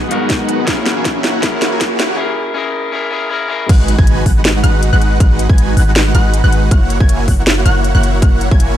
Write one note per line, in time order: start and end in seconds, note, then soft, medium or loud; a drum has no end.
0.00 0.64 F#3 medium
0.00 0.64 B3 medium
0.00 0.64 G#4 medium
0.00 riser medium
0.09 0.38 G#3 medium
0.09 0.64 B3 medium
0.09 0.65 D#4 medium
0.09 0.38 D#4 medium
0.09 0.38 F#4 medium
0.09 0.66 F#4 medium
0.09 0.66 A#4 medium
0.09 0.38 B4 medium
0.09 0.38 F#5 loud
0.09 closed hi-hat medium
0.30 kick medium
0.30 snare medium
0.30 closed hi-hat medium
0.40 0.65 G#3 medium
0.40 0.65 D#4 medium
0.40 0.65 F#4 medium
0.40 0.65 B4 medium
0.40 0.65 F#5 medium
0.49 closed hi-hat medium
0.65 2.17 E3 medium
0.65 2.17 A#3 medium
0.65 0.94 A#3 medium
0.65 1.40 C#4 medium
0.65 1.41 E4 medium
0.65 0.94 E4 medium
0.65 2.17 F#4 medium
0.65 0.94 F#4 medium
0.65 1.42 G#4 medium
0.65 1.43 A#4 medium
0.65 0.94 C#5 medium
0.65 0.94 F#5 medium
0.65 kick loud
0.65 snare medium
0.65 closed hi-hat medium
0.86 snare medium
0.86 closed hi-hat medium
0.97 1.22 A#3 medium
0.97 1.22 E4 medium
0.97 1.22 F#4 medium
0.97 1.22 C#5 medium
0.97 1.22 G#5 medium
1.05 kick loud
1.05 snare medium
1.05 closed hi-hat medium
1.24 1.42 A#3 medium
1.24 1.42 E4 medium
1.24 1.42 F#4 medium
1.24 1.42 C#5 medium
1.24 1.42 F#5 medium
1.24 snare medium
1.24 closed hi-hat medium
1.41 1.70 A#3 medium
1.41 2.15 C#4 medium
1.41 2.17 E4 medium
1.41 1.70 E4 medium
1.41 1.70 F#4 medium
1.41 2.17 G#4 medium
1.41 2.18 A#4 loud
1.41 1.70 C#5 medium
1.41 1.70 F#5 medium
1.41 kick loud
1.41 snare medium
1.41 closed hi-hat medium
1.62 snare medium
1.62 closed hi-hat medium
1.72 1.97 A#3 medium
1.72 1.97 E4 medium
1.72 1.97 F#4 medium
1.72 1.97 C#5 medium
1.72 1.97 G#5 loud
1.81 kick medium
1.81 snare medium
1.81 closed hi-hat medium
1.99 2.17 A#3 medium
1.99 2.17 E4 medium
1.99 2.17 F#4 medium
1.99 2.17 C#5 medium
1.99 2.17 F#5 medium
1.99 snare medium
1.99 closed hi-hat medium
2.16 2.53 C#4 medium
2.16 2.54 E4 medium
2.16 2.55 G#4 medium
2.20 2.56 A#4 loud
2.54 2.91 C#4 loud
2.54 2.92 E4 medium
2.54 2.93 G#4 medium
2.58 2.94 A#4 loud
2.92 3.10 C#4 loud
2.92 3.11 E4 medium
2.92 3.12 G#4 medium
2.92 3.12 A#4 loud
3.11 3.28 C#4 loud
3.11 3.30 E4 medium
3.11 3.31 G#4 medium
3.11 3.31 A#4 loud
3.29 3.47 C#4 medium
3.29 3.48 E4 medium
3.29 3.49 G#4 medium
3.33 3.50 A#4 loud
3.48 3.67 C#4 loud
3.48 3.68 E4 medium
3.48 3.68 G#4 medium
3.52 3.69 A#4 loud
3.69 3.96 G#1 medium
3.69 3.96 G#3 medium
3.69 3.96 D#4 medium
3.69 3.96 F#4 medium
3.69 3.96 B4 medium
3.69 3.96 F#5 medium
3.69 3.96 F#6 medium
3.69 kick loud
3.69 closed hi-hat medium
3.69 crash loud
3.69 impact medium
3.88 closed hi-hat medium
3.98 4.24 G#1 medium
3.98 4.24 G#3 medium
3.98 4.24 D#4 medium
3.98 4.24 F#4 medium
3.98 4.24 B4 medium
3.98 4.24 G#5 loud
3.98 4.24 G#6 loud
3.98 kick loud
4.07 closed hi-hat medium
4.26 4.62 G#1 loud
4.26 4.62 G#3 medium
4.26 4.62 D#4 medium
4.26 4.62 F#4 medium
4.26 4.62 B4 medium
4.26 4.62 F#5 medium
4.26 4.62 F#6 medium
4.26 kick medium
4.26 open hi-hat medium
4.45 snare loud
4.45 closed hi-hat medium
4.63 4.91 G#1 loud
4.63 4.90 G#3 medium
4.63 4.90 D#4 medium
4.63 4.90 F#4 medium
4.63 4.90 B4 medium
4.63 4.90 F#5 loud
4.63 4.90 F#6 loud
4.63 closed hi-hat medium
4.83 closed hi-hat medium
4.93 5.19 G#1 medium
4.93 5.18 G#3 medium
4.93 5.18 D#4 medium
4.93 5.18 F#4 medium
4.93 5.18 B4 medium
4.93 5.18 F#5 loud
4.93 5.18 F#6 loud
5.02 closed hi-hat medium
5.20 5.47 G#1 loud
5.20 5.47 G#3 medium
5.20 5.47 D#4 medium
5.20 5.47 F#4 medium
5.20 5.47 B4 medium
5.20 5.47 F#5 medium
5.20 5.47 F#6 medium
5.20 kick loud
5.20 closed hi-hat medium
5.39 closed hi-hat medium
5.49 5.75 G#1 loud
5.49 5.75 G#3 medium
5.49 5.75 D#4 medium
5.49 5.75 F#4 medium
5.49 5.75 B4 medium
5.49 5.75 G#5 loud
5.49 5.75 G#6 loud
5.49 kick loud
5.58 closed hi-hat medium
5.77 6.13 G#1 loud
5.77 6.13 G#3 medium
5.77 6.13 D#4 medium
5.77 6.13 F#4 medium
5.77 6.13 B4 medium
5.77 6.13 F#5 medium
5.77 6.13 F#6 medium
5.77 open hi-hat medium
5.96 snare loud
5.96 closed hi-hat medium
6.15 6.42 G#1 loud
6.15 6.41 G#3 medium
6.15 6.41 D#4 medium
6.15 6.41 F#4 medium
6.15 6.41 B4 medium
6.15 6.41 F#5 medium
6.15 6.41 F#6 loud
6.15 closed hi-hat medium
6.34 closed hi-hat medium
6.44 6.70 G#1 loud
6.44 6.69 G#3 medium
6.44 6.69 D#4 medium
6.44 6.69 F#4 medium
6.44 6.69 B4 medium
6.44 6.69 F#5 loud
6.44 6.69 F#6 loud
6.52 closed hi-hat medium
6.71 6.98 F#1 loud
6.71 6.98 A#3 medium
6.71 6.98 E4 medium
6.71 6.98 F#4 medium
6.71 6.98 C#5 medium
6.71 6.98 F#5 medium
6.71 6.98 F#6 medium
6.71 kick loud
6.71 closed hi-hat medium
6.90 closed hi-hat medium
7.00 7.26 F#1 loud
7.00 7.26 A#3 medium
7.00 7.26 E4 medium
7.00 7.26 F#4 medium
7.00 7.26 C#5 medium
7.00 7.26 G#5 loud
7.00 7.26 G#6 loud
7.00 kick loud
7.09 closed hi-hat medium
7.28 7.64 F#1 loud
7.28 7.64 A#3 medium
7.28 7.64 E4 medium
7.28 7.64 F#4 medium
7.28 7.64 C#5 medium
7.28 7.64 F#5 medium
7.28 7.64 F#6 medium
7.28 kick medium
7.28 open hi-hat medium
7.47 snare loud
7.47 closed hi-hat medium
7.66 7.93 F#1 loud
7.66 7.92 A#3 medium
7.66 7.92 E4 medium
7.66 7.92 F#4 medium
7.66 7.92 C#5 medium
7.66 7.92 F#5 medium
7.66 7.92 F#6 loud
7.66 closed hi-hat medium
7.84 closed hi-hat medium
7.95 8.20 F#1 loud
7.95 8.20 A#3 medium
7.95 8.20 E4 medium
7.95 8.20 F#4 medium
7.95 8.20 C#5 medium
7.95 8.20 F#5 loud
7.95 8.20 F#6 loud
8.03 closed hi-hat medium
8.22 8.49 F#1 medium
8.22 8.49 A#3 medium
8.22 8.49 E4 medium
8.22 8.49 F#4 medium
8.22 8.49 C#5 medium
8.22 8.49 F#5 medium
8.22 8.49 F#6 medium
8.22 kick loud
8.22 closed hi-hat medium
8.41 closed hi-hat medium
8.51 8.77 F#1 loud
8.51 8.77 A#3 loud
8.51 8.77 E4 medium
8.51 8.77 F#4 medium
8.51 8.77 C#5 medium
8.51 8.77 G#5 loud
8.51 8.77 G#6 loud
8.51 kick loud
8.60 closed hi-hat medium